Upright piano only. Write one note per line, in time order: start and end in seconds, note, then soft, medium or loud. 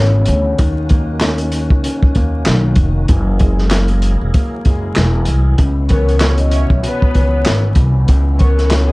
0.00 0.60 C#2 medium
0.00 0.61 E2 medium
0.00 0.60 B2 medium
0.00 0.58 C#3 medium
0.58 1.84 D#3 medium
0.90 2.15 A#3 medium
1.22 1.82 C#4 medium
1.83 3.09 C#4 medium
2.17 3.10 A#3 medium
2.47 3.09 D#3 medium
3.10 4.35 E3 medium
3.39 4.65 G#3 medium
3.71 4.33 A#3 medium
4.35 5.59 A#3 medium
4.66 5.60 G#3 medium
4.97 5.59 E3 medium
5.58 6.83 C#2 medium
5.90 7.15 E2 medium
6.21 6.81 B2 medium
6.83 8.08 B2 medium
7.16 8.38 E2 medium
8.10 8.92 C#2 medium
8.39 8.92 E2 medium
8.71 8.92 B2 medium